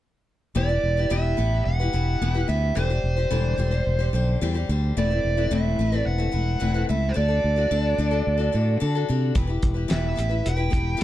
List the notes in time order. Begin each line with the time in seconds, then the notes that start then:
0.55 E1 E3 B3 E4 G4 B4 D5
0.69 E4 G4 B4
0.83 E1
0.97 E4 G4 B4
1.10 E1 E3 B3 E4 G4 B4 E5
1.37 A1 B3 E4 G4 B4
1.65 E1 F#5
1.80 E4 G4 B4
1.93 E1 B3 E4 G4 B4
2.21 E1 E3 B3 E4 G4 B4
2.34 E4 G4 B4
2.48 D2 B3 E4 G4 B4 E5
2.75 E1 D3 E3 G3 G4 C5
2.90 G3 G4 C5
3.04 E1
3.17 G3 G4 C5
3.31 E1 D3 E3 G3 G4 C5
3.58 E1 D3 G3 G4 C5
3.71 G3 G4 C5
3.87 E1
3.99 G3 G4 C5
4.13 B1 D3 G3 G4 C5
4.41 E2 D3 E3 G3 G4 C5
4.54 G3 G4 C5
4.69 D2 D3 G3 G4 C5
4.97 E1 E2 E3 A3 C4 E4 B4 D5
5.10 A3 C4 E4 B4
5.25 E1
5.37 A3 C4 E4 B4
5.51 E1 E2 E3 A3 C4 E4 B4 E5
5.79 A1 A3 C4 E4 B4
5.92 A3 C4 E4 B4
6.06 E1 F#5
6.18 A3 C4 E4 B4
6.32 E1 A3 C4 E4 B4
6.60 E1 E2 E3 A3 C4 E4 B4
6.74 A3 C4 E4 B4
6.89 C#2 A3 C4 E4 B4 E5
7.09 C5
7.14 D2 D3 D4 F#4 A4 D5
7.28 D4 F#4 A4
7.44 D2
7.56 D4 F#4 A4
7.71 D2 D3 D4 F#4 A4
7.98 D2 D3 D4 F#4 A4
8.11 D4 F#4 A4
8.27 D2
8.38 D4 F#4 A4
8.52 A2 D3 D4 F#4 A4
8.80 D3 D4 F#4 A4
8.95 D4 F#4 A4
9.09 C3 D3 D4 F#4 A4
9.35 E1 E3 B3 E4 G4 B4, kick, closed hi-hat
9.47 E4 G4 B4
9.63 E1, kick, closed hi-hat
9.74 E4 G4 B4
9.88 E1 E3 B3 E4 G4 B4 E5, snare, closed hi-hat
10.16 A1 B3 E4 G4 B4, closed hi-hat
10.29 E4 G4 B4
10.46 E1 G5, closed hi-hat
10.57 E4 G4 B4
10.70 E1 B3 E4 G4 B4, kick, closed hi-hat
10.97 E3 B3 E4 G4 B4